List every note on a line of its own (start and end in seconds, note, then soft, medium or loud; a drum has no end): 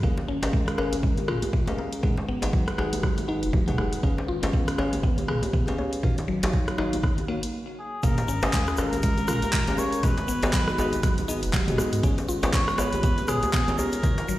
0.03 0.15 G#1 loud
0.03 5.99 G#3 medium
0.03 0.17 A#3 loud
0.03 0.14 C#4 medium
0.03 2.01 C#4 medium
0.03 2.01 F4 medium
0.03 0.14 G#4 medium
0.03 0.14 A#4 medium
0.03 2.01 A#4 medium
0.03 0.14 F5 medium
0.03 kick loud
0.17 djembe slap medium
0.28 0.40 G#1 loud
0.28 0.36 C#4 loud
0.43 0.75 G#1 medium
0.43 0.76 C#4 medium
0.43 0.76 G#4 medium
0.43 0.76 A#4 medium
0.43 0.76 F5 medium
0.43 closed hi-hat medium
0.43 djembe slap loud
0.53 0.61 G#3 loud
0.53 kick loud
0.68 cross-stick medium
0.68 closed hi-hat soft
0.78 1.37 G#1 medium
0.78 0.95 C#4 medium
0.78 0.95 G#4 medium
0.78 0.95 A#4 medium
0.78 0.91 A#4 medium
0.78 0.95 F5 medium
0.78 cross-stick medium
0.78 djembe slap medium
0.92 closed hi-hat medium
0.92 djembe tone medium
1.03 1.17 G#3 loud
1.03 kick loud
1.18 closed hi-hat soft
1.18 djembe tone medium
1.28 1.39 C#4 medium
1.28 1.36 F4 loud
1.28 1.39 G#4 medium
1.28 1.39 A#4 medium
1.28 1.39 F5 medium
1.28 cross-stick medium
1.28 mid tom medium
1.42 closed hi-hat medium
1.42 djembe tone medium
1.53 1.61 G#3 loud
1.53 kick loud
1.53 mid tom medium
1.67 1.76 G#1 medium
1.67 2.01 C#4 medium
1.67 2.01 G#4 medium
1.67 2.01 A#4 medium
1.67 2.01 F5 medium
1.67 closed hi-hat soft
1.67 djembe slap medium
1.67 djembe tone medium
1.78 1.91 A#4 medium
1.78 djembe tone medium
1.93 closed hi-hat medium
2.03 2.17 G#3 loud
2.03 4.01 D#4 medium
2.03 2.14 D#4 medium
2.03 4.01 F#4 medium
2.03 2.14 G#4 medium
2.03 5.99 B4 medium
2.03 2.14 B4 medium
2.03 2.14 F#5 medium
2.03 kick loud
2.03 mid tom medium
2.17 djembe slap medium
2.28 2.40 G#1 loud
2.28 2.36 B3 loud
2.42 2.75 G#1 medium
2.42 2.76 D#4 medium
2.42 2.76 G#4 medium
2.42 2.76 B4 medium
2.42 2.76 F#5 medium
2.42 closed hi-hat medium
2.42 djembe slap medium
2.53 2.61 F#3 loud
2.53 kick loud
2.68 cross-stick medium
2.68 closed hi-hat soft
2.78 3.44 G#1 medium
2.78 2.95 D#4 medium
2.78 2.95 G#4 medium
2.78 2.91 G#4 medium
2.78 2.95 B4 medium
2.78 2.95 F#5 medium
2.78 cross-stick medium
2.78 djembe slap medium
2.93 closed hi-hat medium
2.93 djembe tone medium
3.03 3.17 F#3 loud
3.03 kick loud
3.03 cross-stick medium
3.18 closed hi-hat soft
3.18 djembe tone medium
3.28 3.39 D#4 medium
3.28 3.36 D#4 loud
3.28 3.39 G#4 medium
3.28 3.39 B4 medium
3.28 3.39 F#5 medium
3.43 3.62 D#1 loud
3.43 closed hi-hat medium
3.53 3.61 F#3 loud
3.53 kick loud
3.53 djembe tone medium
3.68 3.76 G#1 medium
3.68 4.01 D#4 medium
3.68 4.01 G#4 medium
3.68 4.01 B4 medium
3.68 4.01 F#5 loud
3.68 closed hi-hat soft
3.68 mid tom loud
3.68 djembe tone loud
3.78 3.90 F#1 medium
3.78 3.91 G#4 medium
3.78 cross-stick medium
3.78 djembe tone medium
3.93 closed hi-hat medium
4.03 4.15 G#1 loud
4.03 6.01 C#4 medium
4.03 4.14 C#4 medium
4.03 4.17 C#4 loud
4.03 6.01 F4 medium
4.03 4.14 G#4 medium
4.03 4.14 B4 medium
4.03 4.14 F5 medium
4.03 kick loud
4.18 djembe slap medium
4.28 4.40 G#1 medium
4.28 4.36 F4 loud
4.43 4.75 G#1 medium
4.43 4.76 C#4 medium
4.43 4.76 G#4 medium
4.43 4.76 B4 medium
4.43 4.76 F5 medium
4.43 closed hi-hat medium
4.43 djembe slap loud
4.53 4.61 B3 loud
4.53 kick loud
4.68 cross-stick medium
4.68 closed hi-hat soft
4.78 5.37 G#1 medium
4.78 4.95 C#4 medium
4.78 4.95 G#4 medium
4.78 4.95 B4 medium
4.78 4.92 C#5 medium
4.78 4.95 F5 medium
4.78 cross-stick medium
4.78 djembe slap medium
4.93 closed hi-hat medium
4.93 djembe tone medium
5.03 5.17 B3 loud
5.03 kick loud
5.18 closed hi-hat soft
5.18 djembe tone medium
5.28 5.39 C#4 medium
5.28 5.36 G#4 loud
5.28 5.39 G#4 medium
5.28 5.39 B4 medium
5.28 5.39 F5 medium
5.28 cross-stick medium
5.28 mid tom medium
5.43 closed hi-hat medium
5.43 djembe tone medium
5.53 5.61 B3 loud
5.53 kick loud
5.53 mid tom medium
5.67 5.76 G#1 medium
5.67 6.01 C#4 medium
5.67 6.01 G#4 medium
5.67 6.01 B4 medium
5.67 6.01 F5 loud
5.67 closed hi-hat soft
5.67 djembe slap medium
5.67 djembe tone medium
5.78 5.91 C#5 medium
5.78 djembe tone medium
5.93 closed hi-hat medium
6.03 6.17 D#3 loud
6.03 7.52 F#3 medium
6.03 7.52 D#4 medium
6.03 6.14 D#4 medium
6.03 6.14 F#4 medium
6.03 7.52 C#5 medium
6.03 6.14 C#5 medium
6.03 7.52 F5 medium
6.03 6.14 F5 loud
6.03 kick loud
6.03 mid tom medium
6.18 closed hi-hat soft
6.18 djembe slap medium
6.28 6.40 G#1 loud
6.28 6.36 F#3 loud
6.43 6.75 G#1 medium
6.43 6.76 D#4 medium
6.43 6.76 F#4 medium
6.43 6.76 C#5 medium
6.43 6.76 F5 medium
6.43 closed hi-hat medium
6.43 djembe slap loud
6.53 6.61 C#3 loud
6.53 kick loud
6.68 cross-stick medium
6.68 closed hi-hat soft
6.78 7.28 G#1 medium
6.78 6.91 D#4 medium
6.78 6.95 D#4 medium
6.78 6.95 F#4 medium
6.78 6.95 C#5 medium
6.78 6.95 F5 medium
6.78 cross-stick medium
6.78 djembe slap medium
6.93 closed hi-hat medium
6.93 djembe tone medium
7.03 7.17 C#3 loud
7.03 kick loud
7.03 cross-stick medium
7.18 closed hi-hat soft
7.18 djembe tone medium
7.28 7.40 G#1 medium
7.28 7.36 A#3 loud
7.28 7.39 D#4 medium
7.28 7.39 F#4 medium
7.28 7.39 C#5 medium
7.28 7.39 F5 medium
7.43 closed hi-hat medium
7.79 8.06 G#4 medium
8.03 8.15 G#1 loud
8.03 10.01 G#3 medium
8.03 8.17 A#3 loud
8.03 8.14 C#4 medium
8.03 10.01 C#4 medium
8.03 10.01 F4 medium
8.03 8.14 G#4 medium
8.03 8.14 A#4 medium
8.03 10.01 A#4 medium
8.03 8.45 A#4 loud
8.03 8.14 F5 loud
8.03 kick loud
8.03 closed hi-hat medium
8.03 sub drop medium
8.03 shaker medium
8.18 closed hi-hat soft
8.18 djembe slap medium
8.18 shaker soft
8.28 8.40 G#1 medium
8.28 8.36 C#4 loud
8.28 shaker medium
8.42 8.75 G#1 medium
8.42 8.76 C#4 medium
8.42 8.76 G#4 medium
8.42 8.78 G#4 medium
8.42 8.76 A#4 medium
8.42 8.76 F5 medium
8.42 closed hi-hat soft
8.42 djembe slap loud
8.42 shaker soft
8.52 8.61 G#3 loud
8.52 kick loud
8.52 clap loud
8.52 closed hi-hat medium
8.52 shaker soft
8.67 cross-stick medium
8.67 shaker soft
8.77 9.37 G#1 medium
8.77 8.95 C#4 medium
8.77 8.95 G#4 medium
8.77 8.91 A#4 medium
8.77 8.95 A#4 medium
8.77 9.80 A#4 loud
8.77 8.95 F5 medium
8.77 cross-stick medium
8.77 djembe slap medium
8.77 shaker medium
8.93 closed hi-hat soft
8.93 djembe tone medium
8.93 shaker soft
9.03 9.17 G#3 loud
9.03 kick loud
9.03 closed hi-hat medium
9.03 shaker medium
9.17 closed hi-hat soft
9.17 djembe tone medium
9.17 shaker soft
9.28 9.39 C#4 medium
9.28 9.36 F4 loud
9.28 9.39 G#4 medium
9.28 9.39 A#4 medium
9.28 9.39 F5 medium
9.28 cross-stick medium
9.28 mid tom medium
9.28 shaker medium
9.42 closed hi-hat soft
9.42 djembe tone medium
9.42 shaker soft
9.53 9.61 G#3 loud
9.53 kick loud
9.53 clap loud
9.53 closed hi-hat medium
9.53 mid tom medium
9.53 shaker medium
9.67 9.76 G#1 medium
9.67 10.01 C#4 medium
9.67 10.01 G#4 medium
9.67 10.01 A#4 medium
9.67 10.01 F5 loud
9.67 closed hi-hat soft
9.67 djembe slap medium
9.67 djembe tone loud
9.67 shaker soft
9.78 9.91 A#4 medium
9.78 10.05 C#5 loud
9.78 djembe tone medium
9.78 shaker loud
9.93 closed hi-hat soft
9.93 shaker soft
10.03 10.17 G#3 loud
10.03 14.00 G#3 medium
10.03 10.14 B3 medium
10.03 12.01 D#4 medium
10.03 10.14 F#4 medium
10.03 12.01 F#4 medium
10.03 10.14 G#4 medium
10.03 13.99 B4 medium
10.03 11.54 B4 loud
10.03 10.14 D#5 loud
10.03 kick loud
10.03 closed hi-hat medium
10.03 mid tom medium
10.03 shaker medium
10.17 closed hi-hat soft
10.17 djembe slap medium
10.17 shaker soft
10.28 10.40 G#1 loud
10.28 10.36 B3 loud
10.28 shaker medium
10.43 10.75 G#1 medium
10.43 10.76 B3 medium
10.43 10.76 F#4 medium
10.43 10.76 G#4 medium
10.43 10.76 D#5 medium
10.43 closed hi-hat soft
10.43 djembe slap loud
10.43 shaker soft
10.53 10.61 F#3 loud
10.53 kick loud
10.53 clap loud
10.53 closed hi-hat medium
10.53 shaker medium
10.68 cross-stick loud
10.68 shaker soft
10.78 11.44 G#1 medium
10.78 10.95 B3 medium
10.78 10.95 F#4 medium
10.78 10.91 G#4 medium
10.78 10.95 G#4 medium
10.78 10.95 D#5 medium
10.78 djembe slap medium
10.78 shaker medium
10.93 closed hi-hat soft
10.93 djembe tone medium
10.93 shaker soft
11.03 11.17 F#3 loud
11.03 kick loud
11.03 cross-stick medium
11.03 closed hi-hat medium
11.03 shaker medium
11.17 closed hi-hat soft
11.17 djembe tone medium
11.17 shaker soft
11.28 11.39 B3 medium
11.28 11.36 D#4 loud
11.28 11.39 F#4 medium
11.28 11.39 G#4 medium
11.28 11.39 D#5 medium
11.28 shaker loud
11.43 11.62 D#1 loud
11.43 closed hi-hat soft
11.43 shaker soft
11.53 11.61 F#3 loud
11.53 kick loud
11.53 clap loud
11.53 closed hi-hat medium
11.53 djembe tone loud
11.53 shaker medium
11.68 11.76 F#1 loud
11.68 12.01 B3 medium
11.68 12.01 F#4 medium
11.68 12.01 G#4 medium
11.68 12.01 D#5 loud
11.68 closed hi-hat soft
11.68 mid tom medium
11.68 djembe tone medium
11.68 shaker soft
11.78 11.91 G#4 medium
11.78 cross-stick medium
11.78 djembe tone loud
11.78 shaker loud
11.93 12.01 G#2 medium
11.93 closed hi-hat soft
11.93 shaker soft
12.03 12.15 G#1 loud
12.03 12.14 B3 medium
12.03 12.17 C#4 loud
12.03 14.01 C#4 medium
12.03 14.01 F4 medium
12.03 12.14 F4 medium
12.03 12.14 G#4 medium
12.03 12.14 C#5 loud
12.03 kick loud
12.03 closed hi-hat medium
12.03 shaker medium
12.18 closed hi-hat soft
12.18 djembe slap medium
12.18 shaker soft
12.28 12.40 G#1 loud
12.28 12.36 F4 loud
12.28 shaker medium
12.43 12.75 G#1 medium
12.43 12.76 B3 medium
12.43 12.76 F4 medium
12.43 12.76 G#4 medium
12.43 12.76 C#5 medium
12.43 closed hi-hat soft
12.43 djembe slap loud
12.43 shaker soft
12.53 12.61 B3 loud
12.53 12.80 C#5 loud
12.53 kick loud
12.53 clap loud
12.53 closed hi-hat medium
12.53 shaker medium
12.68 cross-stick loud
12.68 shaker soft
12.78 13.37 G#1 medium
12.78 12.95 B3 medium
12.78 12.95 F4 medium
12.78 12.95 G#4 medium
12.78 13.30 B4 loud
12.78 12.95 C#5 medium
12.78 12.92 C#5 medium
12.78 cross-stick medium
12.78 djembe slap medium
12.78 shaker loud
12.93 closed hi-hat soft
12.93 djembe tone medium
12.93 shaker soft
13.03 13.17 B3 loud
13.03 kick loud
13.03 closed hi-hat medium
13.03 shaker medium
13.18 closed hi-hat soft
13.18 djembe tone medium
13.18 shaker soft
13.28 13.39 B3 medium
13.28 13.39 F4 medium
13.28 13.39 G#4 medium
13.28 13.53 G#4 loud
13.28 13.36 G#4 loud
13.28 13.39 C#5 medium
13.28 cross-stick loud
13.28 mid tom medium
13.28 shaker loud
13.42 closed hi-hat soft
13.42 djembe tone loud
13.42 shaker soft
13.53 13.61 B3 loud
13.53 13.80 G#4 loud
13.53 kick loud
13.53 clap loud
13.53 closed hi-hat medium
13.53 mid tom medium
13.53 shaker medium
13.68 13.76 G#1 medium
13.68 14.01 B3 medium
13.68 14.01 F4 medium
13.68 14.01 G#4 medium
13.68 14.01 C#5 medium
13.68 closed hi-hat soft
13.68 djembe slap medium
13.68 djembe tone loud
13.68 shaker soft
13.78 14.39 A#4 loud
13.78 13.92 C#5 medium
13.78 djembe tone loud
13.78 shaker medium
13.92 closed hi-hat soft
13.92 shaker soft
14.03 14.17 D#3 loud
14.03 14.14 F#3 medium
14.03 14.39 F#3 medium
14.03 14.14 D#4 medium
14.03 14.39 D#4 medium
14.03 14.39 F4 medium
14.03 14.14 F4 medium
14.03 14.39 C#5 medium
14.03 14.14 C#5 medium
14.03 kick loud
14.03 closed hi-hat medium
14.03 mid tom medium
14.03 shaker medium
14.18 closed hi-hat soft
14.18 djembe slap medium
14.18 shaker soft
14.28 14.39 G#1 loud
14.28 14.36 F#3 loud
14.28 shaker medium